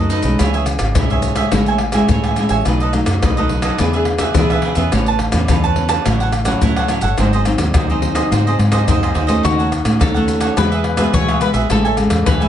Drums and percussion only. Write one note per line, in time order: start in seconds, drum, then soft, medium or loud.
0.10 pandeiro medium
0.10 maracas medium
0.22 pandeiro medium
0.22 maracas medium
0.22 surdo soft
0.39 pandeiro medium
0.39 tamborim medium
0.39 maracas medium
0.39 surdo soft
0.54 pandeiro soft
0.54 maracas soft
0.66 pandeiro medium
0.66 tamborim medium
0.66 maracas medium
0.79 pandeiro medium
0.79 tamborim medium
0.79 maracas medium
0.79 surdo soft
0.95 pandeiro medium
0.95 tamborim medium
0.95 maracas medium
0.95 surdo loud
1.10 pandeiro soft
1.10 maracas soft
1.10 surdo soft
1.22 pandeiro medium
1.22 maracas medium
1.36 pandeiro medium
1.36 tamborim medium
1.36 maracas medium
1.52 pandeiro medium
1.52 tamborim medium
1.52 maracas medium
1.52 surdo medium
1.66 pandeiro soft
1.66 maracas soft
1.78 pandeiro medium
1.78 tamborim medium
1.92 pandeiro medium
1.92 tamborim medium
1.92 maracas medium
1.92 surdo soft
2.09 pandeiro medium
2.09 maracas medium
2.09 surdo loud
2.24 pandeiro soft
2.24 tamborim medium
2.24 maracas soft
2.36 pandeiro soft
2.36 tamborim medium
2.36 maracas medium
2.49 pandeiro medium
2.49 maracas medium
2.49 surdo soft
2.65 pandeiro medium
2.65 tamborim medium
2.65 maracas medium
2.65 surdo medium
2.80 pandeiro soft
2.80 maracas soft
2.93 pandeiro soft
2.93 tamborim medium
2.93 maracas medium
2.93 surdo soft
3.06 pandeiro medium
3.06 tamborim medium
3.06 maracas medium
3.06 surdo soft
3.23 pandeiro medium
3.23 tamborim medium
3.23 maracas medium
3.23 surdo medium
3.37 pandeiro soft
3.37 maracas soft
3.37 surdo soft
3.49 pandeiro medium
3.62 pandeiro medium
3.62 tamborim medium
3.62 maracas medium
3.79 pandeiro medium
3.79 tamborim medium
3.79 maracas medium
3.79 surdo medium
3.93 pandeiro soft
3.93 maracas soft
4.05 pandeiro soft
4.05 tamborim medium
4.18 pandeiro medium
4.18 tamborim medium
4.18 maracas medium
4.18 surdo soft
4.34 pandeiro medium
4.34 maracas medium
4.34 surdo loud
4.50 pandeiro soft
4.50 tamborim medium
4.50 maracas soft
4.62 pandeiro soft
4.62 tamborim medium
4.75 pandeiro medium
4.75 maracas medium
4.75 surdo soft
4.92 pandeiro medium
4.92 tamborim medium
4.92 maracas medium
4.92 surdo medium
5.06 pandeiro soft
5.06 maracas soft
5.19 pandeiro soft
5.19 tamborim medium
5.19 surdo soft
5.32 pandeiro medium
5.32 tamborim medium
5.32 maracas medium
5.32 surdo soft
5.48 pandeiro medium
5.48 tamborim medium
5.48 maracas medium
5.48 surdo medium
5.64 pandeiro soft
5.64 maracas soft
5.64 surdo soft
5.76 pandeiro medium
5.89 pandeiro medium
5.89 tamborim medium
5.89 maracas medium
6.06 pandeiro medium
6.06 tamborim medium
6.06 maracas medium
6.06 surdo medium
6.20 pandeiro soft
6.20 maracas soft
6.32 pandeiro soft
6.32 tamborim medium
6.32 maracas medium
6.45 pandeiro medium
6.45 tamborim medium
6.45 maracas medium
6.45 surdo soft
6.61 pandeiro medium
6.61 maracas medium
6.61 surdo medium
6.76 pandeiro soft
6.76 tamborim medium
6.76 maracas soft
6.88 pandeiro medium
6.88 tamborim medium
6.88 maracas medium
7.01 pandeiro medium
7.01 maracas medium
7.01 surdo soft
7.18 pandeiro medium
7.18 tamborim medium
7.18 maracas medium
7.18 surdo medium
7.33 pandeiro soft
7.33 maracas soft
7.45 pandeiro soft
7.45 tamborim medium
7.45 maracas medium
7.45 surdo soft
7.58 pandeiro medium
7.58 tamborim medium
7.58 maracas medium
7.58 surdo soft
7.74 pandeiro medium
7.74 tamborim medium
7.74 maracas medium
7.74 surdo loud
7.90 pandeiro soft
7.90 maracas soft
7.90 surdo soft
8.02 pandeiro medium
8.15 pandeiro medium
8.15 tamborim medium
8.15 maracas medium
8.32 pandeiro medium
8.32 tamborim medium
8.32 maracas medium
8.32 surdo medium
8.47 pandeiro soft
8.47 maracas soft
8.59 pandeiro medium
8.59 tamborim medium
8.72 pandeiro medium
8.72 tamborim medium
8.72 maracas medium
8.72 surdo soft
8.88 pandeiro medium
8.88 maracas medium
8.88 surdo loud
9.03 pandeiro soft
9.03 tamborim medium
9.03 maracas soft
9.15 pandeiro medium
9.15 tamborim medium
9.29 pandeiro medium
9.29 maracas medium
9.29 surdo soft
9.45 pandeiro medium
9.45 tamborim medium
9.45 maracas medium
9.45 surdo medium
9.60 pandeiro soft
9.60 maracas soft
9.72 pandeiro soft
9.72 tamborim medium
9.72 maracas medium
9.72 surdo soft
9.85 pandeiro medium
9.85 tamborim medium
9.85 maracas medium
9.85 surdo soft
10.01 pandeiro medium
10.01 tamborim medium
10.01 maracas medium
10.01 surdo medium
10.16 pandeiro soft
10.16 maracas soft
10.16 surdo soft
10.28 pandeiro medium
10.28 maracas medium
10.41 pandeiro medium
10.41 tamborim medium
10.41 maracas medium
10.57 pandeiro medium
10.57 tamborim medium
10.57 maracas medium
10.57 surdo medium
10.72 pandeiro soft
10.72 maracas soft
10.84 pandeiro soft
10.84 tamborim medium
10.97 pandeiro medium
10.97 tamborim medium
10.97 maracas medium
10.97 surdo soft
11.14 pandeiro medium
11.14 maracas medium
11.14 surdo loud
11.29 pandeiro soft
11.29 tamborim medium
11.29 maracas soft
11.41 pandeiro medium
11.41 tamborim medium
11.41 maracas medium
11.54 pandeiro medium
11.54 maracas medium
11.54 surdo soft
11.70 pandeiro medium
11.70 tamborim medium
11.70 maracas medium
11.70 surdo medium
11.85 pandeiro soft
11.85 maracas soft
11.97 pandeiro soft
11.97 tamborim medium
11.97 maracas medium
11.97 surdo soft
12.10 pandeiro medium
12.10 tamborim medium
12.10 maracas medium
12.10 surdo soft
12.26 pandeiro medium
12.26 tamborim medium
12.26 maracas medium
12.26 surdo medium
12.42 pandeiro soft
12.42 maracas soft
12.42 surdo soft